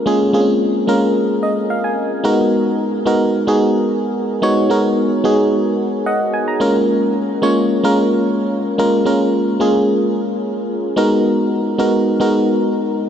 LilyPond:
\new Staff \with { instrumentName = "FM electric piano" } { \time 4/4 \key gis \dorian \tempo 4 = 110 << { r2 r8 dis''8 eis''16 gis''8. | r1 | r2. <dis'' fis''>8 gis''16 ais''16~ | ais''16 r2. r8. |
r1 | r1 | } \\ { <gis ais cis' eis' gis'>8 <gis ais bis cis' eis' gis'>8. r16 <gis ais cis' eis' ais'>4. r4 | <gis b dis' fis' ais'>4~ <gis b dis' fis' ais'>16 r16 <gis b dis' fis' ais'>8 r16 <gis b dis' fis' gis'>4. r16 | <gis b dis' fis' cis''>8 <gis b dis' fis' ais'>8. r16 <gis b dis' fis' gis'>4. r4 | <gis ais cis' eis' ais'>4~ <gis ais cis' eis' ais'>16 r16 <gis ais cis' eis' cis''>8 r16 <gis ais cis' eis' ais'>4. r16 |
<gis ais cis' eis' ais'>8 <gis ais cis' eis' ais'>8. r16 <gis ais cis' eis' gis'>4. r4 | <gis b dis' fis' ais'>4~ <gis b dis' fis' ais'>16 r16 <gis b dis' fis' ais'>8 r16 <gis b dis' fis' ais'>4. r16 | } >> }